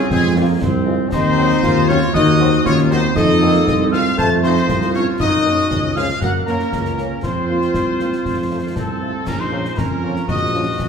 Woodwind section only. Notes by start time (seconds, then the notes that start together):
0.11 C4
1.12 D#4
1.89 F4
2.14 F#4
2.65 F4
2.91 D#4
3.16 A4
3.92 A4
4.18 C5
4.44 D#4
4.95 F4
5.21 F#4
5.97 G#4
6.22 A#4
6.48 C#4
7.23 F4
8.76 C4
9.26 C#4
9.39 D#4
9.77 C#4
10.27 F#4